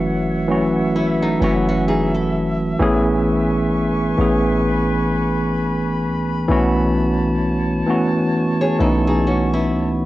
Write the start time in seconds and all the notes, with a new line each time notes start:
Already playing: F#1 E3 F#3 A3 C#4 F#4 C#5 E5 F#5
0.48 E3 F#3 A3 C#4 F#4
0.96 B3 E4
1.22 A3 D#4
1.40 F#1 E3 F#3 A3 B3 C#4 E4 F#4
1.69 C#4 F#4
1.88 D#4 G#4
2.14 E4 A4
2.79 A1 E3 A3 B3 C#4 G#4 B4 G#5 C#6
4.17 A1 E3 A3 B3 C#4 G#4
4.64 B5
6.03 C#2
6.48 B1 E3 A3 B3 C#4 F#4 C#5 A5
7.87 E3 A3 B3 C#4 F#4
8.34 C#6
8.61 G#4 C#5
8.79 B1 E3 A3 B3 C#4 D#4 E4 A4
9.07 D#4 G#4
9.27 C#4 F#4
9.54 B3 E4
9.73 C#2